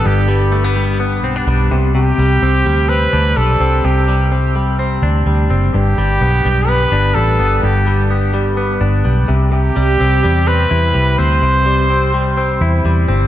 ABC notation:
X:1
M:4/4
L:1/16
Q:1/4=127
K:Clyd
V:1 name="Trumpet"
G4 z12 | G8 B4 A4 | G4 z12 | G8 B4 A4 |
G4 z12 | G8 B6 c2- | c12 z4 |]
V:2 name="Clean electric guitar" clef=bass
[G,,G,B,D]2 G,2 A, B, G,2 B,2 C D G,2 C,2 | C,2 G,2 C2 G,2 C2 D2 G,2 C2 | C,2 G,2 C2 G,2 C2 D2 G,2 C2 | G,,2 G,2 B,2 G,2 B,2 D2 G,2 B,2 |
G,,2 G,2 B,2 G,2 B,2 D2 G,2 C,2 | C,2 G,2 C2 G,2 C2 E2 G,2 C2 | C,2 G,2 C2 G,2 C2 E2 G,2 C2 |]
V:3 name="Fingered electric bass" clef=bass
G,,,8- G,,,2 B,,,2 B,,,2 C,,2- | C,,2 C,,2 C,,2 D,,4 D,,2 B,,,2 C,,2 | C,,8- C,,2 D,,2 D,,2 F,,,2 | G,,,2 G,,,2 B,,,2 B,,,4 G,,,2 A,,,2 G,,,2 |
G,,,8- G,,,2 G,,,2 B,,,2 C,,2- | C,,2 C,,2 C,,2 E,,4 E,,2 C,,2 D,,2 | C,,8- C,,2 E,,2 E,,2 G,,,2 |]